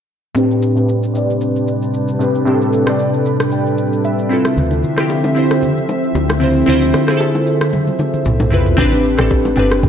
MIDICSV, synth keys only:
0, 0, Header, 1, 2, 480
1, 0, Start_track
1, 0, Key_signature, 0, "minor"
1, 0, Tempo, 526316
1, 329, Time_signature, 4, 2, 24, 8
1, 9019, End_track
2, 0, Start_track
2, 0, Title_t, "Synth keys"
2, 0, Program_c, 0, 88
2, 315, Note_on_c, 0, 45, 106
2, 324, Note_on_c, 0, 60, 100
2, 332, Note_on_c, 0, 62, 99
2, 341, Note_on_c, 0, 67, 95
2, 349, Note_on_c, 0, 71, 113
2, 506, Control_c, 0, 64, 127
2, 615, Note_off_c, 0, 45, 0
2, 620, Note_off_c, 0, 60, 0
2, 624, Note_off_c, 0, 62, 0
2, 628, Note_off_c, 0, 67, 0
2, 632, Note_off_c, 0, 71, 0
2, 686, Note_on_c, 0, 45, 85
2, 694, Note_on_c, 0, 60, 75
2, 703, Note_on_c, 0, 62, 74
2, 711, Note_on_c, 0, 67, 76
2, 719, Note_on_c, 0, 71, 87
2, 977, Note_off_c, 0, 45, 0
2, 981, Note_off_c, 0, 60, 0
2, 985, Note_off_c, 0, 62, 0
2, 990, Note_off_c, 0, 67, 0
2, 994, Note_off_c, 0, 71, 0
2, 1036, Note_on_c, 0, 45, 74
2, 1044, Note_on_c, 0, 60, 67
2, 1053, Note_on_c, 0, 62, 69
2, 1060, Note_on_c, 0, 67, 70
2, 1069, Note_on_c, 0, 74, 81
2, 1816, Note_off_c, 0, 45, 0
2, 1820, Note_off_c, 0, 60, 0
2, 1824, Note_off_c, 0, 62, 0
2, 1828, Note_off_c, 0, 67, 0
2, 1832, Note_off_c, 0, 74, 0
2, 1995, Note_on_c, 0, 45, 78
2, 2003, Note_on_c, 0, 60, 71
2, 2012, Note_on_c, 0, 62, 71
2, 2020, Note_on_c, 0, 67, 73
2, 2028, Note_on_c, 0, 71, 90
2, 2199, Note_off_c, 0, 45, 0
2, 2203, Note_off_c, 0, 60, 0
2, 2207, Note_off_c, 0, 62, 0
2, 2212, Note_off_c, 0, 67, 0
2, 2216, Note_off_c, 0, 71, 0
2, 2236, Note_on_c, 0, 45, 112
2, 2244, Note_on_c, 0, 60, 97
2, 2253, Note_on_c, 0, 62, 96
2, 2261, Note_on_c, 0, 67, 97
2, 2270, Note_on_c, 0, 69, 119
2, 2536, Note_off_c, 0, 45, 0
2, 2539, Note_off_c, 0, 60, 0
2, 2544, Note_off_c, 0, 62, 0
2, 2548, Note_off_c, 0, 67, 0
2, 2552, Note_off_c, 0, 69, 0
2, 2608, Note_on_c, 0, 45, 86
2, 2616, Note_on_c, 0, 60, 79
2, 2625, Note_on_c, 0, 62, 81
2, 2633, Note_on_c, 0, 67, 76
2, 2641, Note_on_c, 0, 74, 92
2, 2970, Note_on_c, 0, 83, 68
2, 3193, Note_off_c, 0, 83, 0
2, 3213, Note_on_c, 0, 79, 67
2, 3378, Note_off_c, 0, 45, 0
2, 3382, Note_off_c, 0, 60, 0
2, 3386, Note_off_c, 0, 62, 0
2, 3391, Note_off_c, 0, 67, 0
2, 3395, Note_off_c, 0, 74, 0
2, 3658, Note_off_c, 0, 79, 0
2, 3691, Note_on_c, 0, 76, 74
2, 3914, Note_on_c, 0, 60, 83
2, 3925, Note_on_c, 0, 64, 81
2, 3936, Note_on_c, 0, 65, 76
2, 3942, Control_c, 0, 64, 0
2, 3948, Note_on_c, 0, 69, 89
2, 4102, Control_c, 0, 64, 127
2, 4137, Note_off_c, 0, 76, 0
2, 4402, Note_off_c, 0, 60, 0
2, 4407, Note_off_c, 0, 64, 0
2, 4413, Note_off_c, 0, 65, 0
2, 4419, Note_off_c, 0, 69, 0
2, 4527, Note_on_c, 0, 60, 85
2, 4538, Note_on_c, 0, 64, 74
2, 4550, Note_on_c, 0, 65, 78
2, 4561, Note_on_c, 0, 67, 93
2, 4818, Note_off_c, 0, 60, 0
2, 4823, Note_off_c, 0, 64, 0
2, 4829, Note_off_c, 0, 65, 0
2, 4835, Note_off_c, 0, 67, 0
2, 4877, Note_on_c, 0, 60, 75
2, 4887, Note_on_c, 0, 64, 70
2, 4899, Note_on_c, 0, 65, 69
2, 4911, Note_on_c, 0, 72, 85
2, 5656, Note_off_c, 0, 60, 0
2, 5661, Note_off_c, 0, 64, 0
2, 5667, Note_off_c, 0, 65, 0
2, 5673, Note_off_c, 0, 72, 0
2, 5836, Note_on_c, 0, 60, 82
2, 5847, Note_on_c, 0, 64, 75
2, 5857, Note_on_c, 0, 65, 75
2, 5868, Note_on_c, 0, 72, 90
2, 6039, Note_off_c, 0, 60, 0
2, 6045, Note_off_c, 0, 64, 0
2, 6050, Note_off_c, 0, 65, 0
2, 6056, Note_off_c, 0, 72, 0
2, 6074, Note_on_c, 0, 60, 109
2, 6086, Note_on_c, 0, 64, 104
2, 6097, Note_on_c, 0, 65, 101
2, 6107, Note_on_c, 0, 72, 122
2, 6375, Note_off_c, 0, 60, 0
2, 6381, Note_off_c, 0, 64, 0
2, 6386, Note_off_c, 0, 65, 0
2, 6391, Note_off_c, 0, 72, 0
2, 6446, Note_on_c, 0, 60, 83
2, 6458, Note_on_c, 0, 64, 82
2, 6469, Note_on_c, 0, 65, 76
2, 6480, Note_on_c, 0, 68, 77
2, 6523, Note_off_c, 0, 68, 0
2, 6538, Note_on_c, 0, 69, 94
2, 7217, Note_off_c, 0, 60, 0
2, 7223, Note_off_c, 0, 64, 0
2, 7228, Note_off_c, 0, 65, 0
2, 7263, Note_off_c, 0, 69, 0
2, 7755, Note_on_c, 0, 60, 78
2, 7766, Note_on_c, 0, 64, 74
2, 7777, Note_on_c, 0, 65, 73
2, 7788, Note_on_c, 0, 71, 91
2, 7959, Note_off_c, 0, 60, 0
2, 7965, Note_off_c, 0, 64, 0
2, 7970, Note_off_c, 0, 65, 0
2, 7976, Note_off_c, 0, 71, 0
2, 7996, Note_on_c, 0, 60, 120
2, 8006, Note_on_c, 0, 62, 101
2, 8017, Note_on_c, 0, 67, 104
2, 8023, Control_c, 0, 64, 0
2, 8028, Note_on_c, 0, 71, 126
2, 8197, Control_c, 0, 64, 127
2, 8295, Note_off_c, 0, 60, 0
2, 8301, Note_off_c, 0, 62, 0
2, 8306, Note_off_c, 0, 67, 0
2, 8312, Note_off_c, 0, 71, 0
2, 8367, Note_on_c, 0, 60, 82
2, 8378, Note_on_c, 0, 62, 77
2, 8389, Note_on_c, 0, 67, 76
2, 8400, Note_on_c, 0, 69, 89
2, 8657, Note_off_c, 0, 60, 0
2, 8663, Note_off_c, 0, 62, 0
2, 8669, Note_off_c, 0, 67, 0
2, 8674, Note_off_c, 0, 69, 0
2, 8715, Note_on_c, 0, 60, 85
2, 8727, Note_on_c, 0, 62, 78
2, 8738, Note_on_c, 0, 67, 80
2, 8749, Note_on_c, 0, 71, 98
2, 9019, Note_off_c, 0, 60, 0
2, 9019, Note_off_c, 0, 62, 0
2, 9019, Note_off_c, 0, 67, 0
2, 9019, Note_off_c, 0, 71, 0
2, 9019, End_track
0, 0, End_of_file